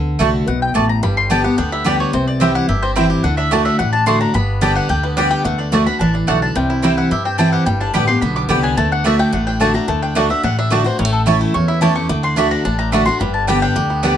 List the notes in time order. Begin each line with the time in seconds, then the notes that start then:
Already playing: D2 D3
0.19 C2 D3 A3 D4 F#4 D5 A5
0.47 B1 B2 F#5
0.62 G5
0.74 A1 A2 A3 F#4 D5 A5
0.89 A#5
1.03 G1 G2 G3 B5
1.17 C6
1.30 D3 G3 B3 G4 D5 G5 A5
1.44 B3 G4 F#5
1.58 D2 D3 D4 G5
1.72 G3 E5
1.84 D3 G3 B3 D4 G4 D5 G5
2.00 G4 C#5
2.13 C2 C3 C4 C5
2.28 D5
2.40 E3 G3 C4 E4 G4 C5 E5 G5
2.55 E4 F#5
2.69 G1 G2 G4 E5
2.82 C4 C5
2.96 E3 G3 C4 E4 C5 G5
3.10 G4
3.24 D2 D3 D4 F#5
3.37 D4 E5
3.51 D3 A3 D4 F#4 D5 A5
3.65 D4 E5
3.79 A1 A2 D4 F#5
3.93 D4 A5
4.06 D3 A3 D4 F#4 D5 A5 C6
4.21 D4 A#5
4.34 G1 G2 B3 B5
4.61 D3 G3 B3 G4 D5 G5 A5
4.76 D4 F#5
4.89 D2 D3 G4 G5
5.03 B3 B4
5.17 D3 G3 B3 D4 G4 D5 G5
5.31 G4 G5
5.45 D2 D3 A3 F#5
5.58 D4 D5
5.72 D3 A3 D4 F#4 D5 A5
5.86 D4 F#4 B5
5.99 A1 E3 D4 A5
6.14 D4 D5
6.27 B1 D3 A3 D4 F#4 D5 F#5 A5
6.42 D4 A5
6.55 C2 C3 G3 G5
6.70 E4
6.82 E3 G3 C4 E4 C5 G5
6.97 E4 F#5
7.11 G2 G4 E5
7.25 C4 G5
7.38 E3 G3 C4 E4 C5 G5 A5
7.52 G4 F#5
7.66 G1 G2 G3 G5
7.80 D4 A5
7.94 A1 D3 G3 B3 G4 D5 G5 B5
8.07 B3 G4 C6
8.21 B1 D3 B3 B5
8.36 G3 D6
8.49 C2 D3 G3 B3 G4 D5 G5
8.63 D4 G#5
8.77 D2 D3 A3 A5
8.92 D4 F#5
9.04 D3 A3 D4 F#4 D5 E5 A5
9.19 A3 G5
9.33 A1 A2 D4 F#5
9.47 D4 G5
9.60 D3 A3 D4 F#4 D5 A5
9.74 A3 D4 F#4 A#5
9.88 D2 D3 A3 A5
10.02 D4 G5
10.15 D3 A3 D4 F#4 D5 F#5 A5
10.29 D4 F#4 E5
10.43 A1 A2 D4 F#5
10.59 D4 E5
10.70 D3 A3 D4 F#4 D5 A5
10.84 D4 F#4 C5
10.99 A1 A2 G3 C#5
11.05 A3
11.13 A4
11.26 E3 A3 C#4 E4 C#5 A5
11.41 A3
11.54 E2 C#4 C#6
11.68 E4 E5
11.81 E3 A3 C#4 E4 G4 C#5 A5
11.95 A3 C#4 E4 C#6
12.09 D2 D3 A3 D6
12.23 D4 C6
12.36 D3 A3 D4 F#4 D5 A5 B5
12.51 D4 A#5
12.65 A1 A2 D4 A5
12.79 A3 A#5
12.92 D3 A3 D4 F#4 D5 A5 B5
13.06 D4 F#4 C6
13.20 G1 G2 G3 B5
13.34 A5
13.47 D3 G3 B3 G4 D5 G5
13.62 D4 G5
13.76 D2 D3 G4
13.90 B3
14.03 D3 G3 B3 D4 G4 D5 G5